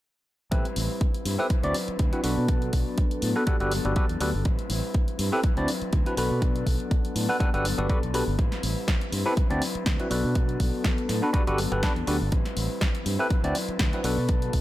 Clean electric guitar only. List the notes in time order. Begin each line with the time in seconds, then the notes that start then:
0.51 G3 C4 E4 B4
0.76 G3 C4 E4 B4
1.25 G3 C4 E4 B4
1.38 C4 E4 B4
1.50 F#3 C4 E4 B4
1.63 C4 E4 B4
1.74 F#3 C4 E4 B4
1.98 F#3 C4 E4 B4
2.23 F#3 B3 D4 A4
2.36 B3 D4 A4
2.48 F#3 B3 D4 A4
2.72 F#3 B3 D4 A4
3.21 F#3 B3 D4 A4
3.35 B3 D4 A4
3.46 F#3 B3 D4 A4
3.60 B3 D4 A4
3.71 F#3 B3 D4 A4
3.96 F#3 B3 D4 A4
4.20 F#3 B3 D4 A4
4.33 B3 D4 A4
4.45 G3 C4 E4 B4
4.69 G3 C4 E4 B4
5.18 G3 C4 E4 B4
5.32 C4 E4 B4
5.43 F#3 C4 E4 B4
5.56 C4 E4 B4
5.67 F#3 C4 E4 B4
5.92 F#3 C4 E4 B4
6.16 F#3 B3 D4 A4
6.30 B3 D4 A4
6.41 F#3 B3 D4 A4
6.65 F#3 B3 D4 A4
7.15 F#3 B3 D4 A4
7.28 B3 A4
7.39 F#3 B3 D4 A4
7.53 B3 D4 A4
7.64 F#3 B3 D4 A4
7.88 F#3 B3 D4 A4
8.13 F#3 B3 D4 A4
8.27 B3 D4 A4
8.38 G3 C4 E4 B4
8.62 G3 C4 E4 B4
9.12 G3 C4 E4 B4
9.25 C4 E4 B4
9.36 F#3 C4 E4 B4
9.50 C4 E4 B4
9.61 F#3 C4 E4 B4
9.85 F#3
10.10 F#3 B3 D4 A4
10.23 B3 D4 A4
10.35 F#3 B3 D4 A4
10.59 F#3 B3 D4 A4
11.08 F#3 B3 D4 A4
11.23 B3 D4
11.33 F#3 B3 D4 A4
11.46 D4 A4
11.57 F#3 B3 D4 A4
11.82 F#3 B3 D4
12.07 F#3 B3 D4 A4
12.20 B3 D4 A4
12.31 G3 C4 E4 B4
12.56 G3 C4 E4 B4
13.05 G3 C4 E4 B4
13.19 C4 E4 B4
13.30 F#3 C4 E4 B4
13.43 C4 E4 B4
13.54 F#3 C4 E4 B4
13.79 F#3 C4 E4 B4
14.04 F#3 B3 D4 A4
14.17 B3 D4 A4
14.28 F#3 B3 D4 A4
14.53 F#3 B3 D4 A4